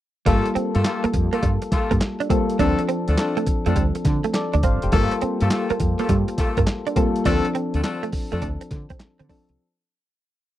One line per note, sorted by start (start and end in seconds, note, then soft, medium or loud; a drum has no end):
0.26 0.40 G1 loud
0.26 1.15 G3 medium
0.26 0.41 G3 medium
0.26 0.48 A3 loud
0.26 0.48 A#3 loud
0.26 1.15 A#3 medium
0.26 0.48 F4 medium
0.26 1.15 F4 medium
0.26 0.48 G4 medium
0.26 0.48 A4 loud
0.26 1.15 A4 medium
0.26 kick loud
0.26 closed hi-hat medium
0.46 muted clean electric guitar stroke soft
0.46 closed hi-hat medium
0.55 0.70 C4 medium
0.55 muted fretless electric bass stroke soft
0.55 closed hi-hat medium
0.74 0.82 G2 medium
0.74 0.84 A3 medium
0.74 0.83 A#3 medium
0.74 0.83 F4 medium
0.74 0.83 G4 medium
0.74 0.84 A4 medium
0.74 closed hi-hat medium
0.84 1.07 A3 medium
0.84 1.06 A#3 medium
0.84 1.07 F4 medium
0.84 1.07 G4 medium
0.84 1.07 A4 medium
0.84 snare loud
0.84 clap medium
0.84 closed hi-hat medium
1.04 1.12 A#3 medium
1.04 muted fretless electric bass stroke soft
1.04 closed hi-hat medium
1.14 1.28 F2 medium
1.14 muted clean electric guitar stroke soft
1.14 kick medium
1.14 closed hi-hat medium
1.32 1.48 A3 medium
1.32 1.48 A#3 medium
1.32 1.40 A#3 medium
1.32 1.48 F4 medium
1.32 1.48 G4 medium
1.32 1.48 A4 medium
1.32 closed hi-hat soft
1.43 1.57 G2 medium
1.43 1.58 G3 medium
1.43 kick medium
1.43 closed hi-hat medium
1.62 muted clean electric guitar stroke soft
1.62 closed hi-hat medium
1.71 1.94 A3 medium
1.71 1.94 A#3 medium
1.71 1.94 F4 medium
1.71 1.94 G4 medium
1.71 1.94 A4 medium
1.71 muted fretless electric bass stroke soft
1.71 kick loud
1.71 snare medium
1.71 closed hi-hat medium
1.91 1.98 G2 medium
1.91 1.99 A#3 medium
1.91 kick medium
1.91 closed hi-hat soft
2.01 muted clean electric guitar stroke soft
2.01 snare loud
2.01 clap medium
2.01 closed hi-hat medium
2.20 2.28 D4 medium
2.20 closed hi-hat soft
2.29 2.54 G3 medium
2.29 2.54 A#3 medium
2.29 2.45 C4 medium
2.29 2.55 F4 medium
2.29 2.55 A4 medium
2.29 kick loud
2.29 closed hi-hat medium
2.50 closed hi-hat medium
2.59 2.73 D2 loud
2.59 3.48 F3 medium
2.59 2.81 A3 loud
2.59 2.81 C4 medium
2.59 3.48 C4 medium
2.59 2.81 D4 medium
2.59 2.74 D4 medium
2.59 3.48 D4 medium
2.59 2.81 F4 medium
2.59 2.81 A4 loud
2.59 3.48 A4 medium
2.59 kick loud
2.59 closed hi-hat medium
2.79 muted clean electric guitar stroke soft
2.79 closed hi-hat medium
2.89 3.04 C4 medium
2.89 closed hi-hat medium
3.07 3.15 D2 medium
3.07 3.17 A3 medium
3.07 3.16 C4 medium
3.07 3.16 D4 medium
3.07 3.16 F4 medium
3.07 3.17 A4 medium
3.07 closed hi-hat medium
3.17 3.40 A3 medium
3.17 3.39 C4 medium
3.17 3.40 D4 medium
3.17 3.40 F4 medium
3.17 3.40 A4 medium
3.17 snare loud
3.17 clap medium
3.17 closed hi-hat medium
3.37 3.45 A3 medium
3.37 closed hi-hat soft
3.47 muted clean electric guitar stroke soft
3.47 muted fretless electric bass stroke soft
3.47 kick medium
3.47 closed hi-hat medium
3.66 3.73 F2 medium
3.66 3.74 A3 medium
3.66 3.81 A3 medium
3.66 3.81 C4 medium
3.66 3.81 D4 medium
3.66 3.81 F4 medium
3.66 3.81 A4 medium
3.66 closed hi-hat medium
3.76 3.90 D2 medium
3.76 3.91 G3 medium
3.76 kick medium
3.76 closed hi-hat medium
3.95 muted clean electric guitar stroke soft
3.95 closed hi-hat medium
4.05 4.19 D3 loud
4.05 kick medium
4.05 snare medium
4.05 closed hi-hat medium
4.24 4.32 A3 medium
4.24 closed hi-hat soft
4.34 4.62 A4 medium
4.34 4.62 D5 medium
4.34 muted clean electric guitar stroke soft
4.34 snare loud
4.34 clap medium
4.34 closed hi-hat medium
4.53 4.61 D2 medium
4.53 4.61 D4 medium
4.53 closed hi-hat soft
4.63 4.77 G1 medium
4.63 4.78 C4 medium
4.63 4.82 C5 medium
4.63 4.82 F5 medium
4.63 kick loud
4.63 closed hi-hat medium
4.82 4.90 F1 medium
4.82 5.11 G4 medium
4.82 5.10 C5 medium
4.82 closed hi-hat medium
4.92 5.06 G1 loud
4.92 5.81 G3 medium
4.92 5.08 G3 medium
4.92 5.15 A3 loud
4.92 5.14 A#3 loud
4.92 5.81 A#3 medium
4.92 5.14 F4 medium
4.92 5.81 F4 medium
4.92 5.15 G4 medium
4.92 5.15 A4 loud
4.92 5.81 A4 medium
4.92 kick loud
4.92 closed hi-hat medium
5.11 muted clean electric guitar stroke soft
5.11 closed hi-hat medium
5.21 5.37 C4 medium
5.21 muted fretless electric bass stroke soft
5.21 closed hi-hat medium
5.41 5.48 G2 medium
5.41 5.50 A3 medium
5.41 5.49 A#3 medium
5.41 5.50 F4 medium
5.41 5.50 G4 medium
5.41 5.50 A4 medium
5.41 closed hi-hat medium
5.50 5.73 A3 medium
5.50 5.73 A#3 medium
5.50 5.73 F4 medium
5.50 5.73 G4 medium
5.50 5.73 A4 medium
5.50 snare loud
5.50 clap medium
5.50 closed hi-hat medium
5.70 5.78 A#3 medium
5.70 muted fretless electric bass stroke soft
5.70 closed hi-hat soft
5.80 5.94 F2 medium
5.80 muted clean electric guitar stroke soft
5.80 kick medium
5.80 closed hi-hat medium
5.99 6.14 A3 medium
5.99 6.14 A#3 medium
5.99 6.07 A#3 medium
5.99 6.14 F4 medium
5.99 6.14 G4 medium
5.99 6.14 A4 medium
5.99 closed hi-hat medium
6.09 6.23 G2 loud
6.09 6.24 G3 medium
6.09 kick medium
6.09 closed hi-hat medium
6.28 muted clean electric guitar stroke soft
6.28 closed hi-hat medium
6.38 6.60 A3 medium
6.38 6.60 A#3 medium
6.38 6.60 F4 medium
6.38 6.60 G4 medium
6.38 6.60 A4 medium
6.38 muted fretless electric bass stroke soft
6.38 kick medium
6.38 snare medium
6.38 closed hi-hat medium
6.57 6.64 G2 loud
6.57 6.65 A#3 medium
6.57 kick loud
6.57 closed hi-hat soft
6.67 muted clean electric guitar stroke soft
6.67 snare loud
6.67 clap medium
6.67 closed hi-hat medium
6.87 6.94 D4 medium
6.87 closed hi-hat soft
6.96 7.20 G3 medium
6.96 7.21 A#3 medium
6.96 7.11 C4 medium
6.96 7.21 F4 medium
6.96 7.21 A4 loud
6.96 kick loud
6.96 closed hi-hat medium
7.16 closed hi-hat medium
7.25 7.39 D2 loud
7.25 8.14 F3 medium
7.25 7.48 A3 loud
7.25 7.47 C4 medium
7.25 8.14 C4 medium
7.25 7.47 D4 medium
7.25 8.14 D4 medium
7.25 7.41 D4 medium
7.25 7.48 F4 medium
7.25 7.48 A4 loud
7.25 8.14 A4 medium
7.25 kick loud
7.25 closed hi-hat medium
7.45 muted clean electric guitar stroke soft
7.45 closed hi-hat medium
7.55 7.70 C4 medium
7.55 closed hi-hat medium
7.74 7.81 D2 medium
7.74 7.83 A3 medium
7.74 7.82 C4 medium
7.74 7.82 D4 medium
7.74 7.83 F4 medium
7.74 7.83 A4 medium
7.74 closed hi-hat medium
7.83 8.06 A3 medium
7.83 8.05 C4 medium
7.83 8.06 D4 medium
7.83 8.06 F4 medium
7.83 8.06 A4 medium
7.83 snare loud
7.83 clap medium
7.83 closed hi-hat medium
8.03 8.11 A3 medium
8.03 closed hi-hat soft
8.13 muted clean electric guitar stroke soft
8.13 muted fretless electric bass stroke soft
8.13 kick medium
8.13 open hi-hat medium
8.32 8.39 F2 medium
8.32 8.40 A3 medium
8.32 8.47 A3 medium
8.32 8.47 C4 medium
8.32 8.47 D4 medium
8.32 8.47 F4 medium
8.32 8.47 A4 medium
8.32 closed hi-hat soft
8.42 8.56 D2 loud
8.42 8.57 D4 medium
8.42 kick medium
8.42 closed hi-hat medium
8.61 muted clean electric guitar stroke soft
8.61 closed hi-hat medium
8.71 8.85 D3 medium
8.71 kick medium
8.71 snare medium
8.71 closed hi-hat medium
8.90 8.98 C4 medium
8.90 kick medium
8.90 closed hi-hat soft
9.00 muted clean electric guitar stroke soft
9.00 snare loud
9.00 clap medium
9.00 closed hi-hat medium
9.19 9.27 D3 loud
9.19 9.27 C4 medium
9.19 closed hi-hat soft
9.29 9.53 F3 medium
9.29 9.54 C4 medium
9.29 9.44 D4 medium
9.29 9.54 D4 medium
9.29 9.54 A4 medium
9.29 kick loud
9.29 open hi-hat medium
9.49 9.56 C2 medium
9.49 closed hi-hat medium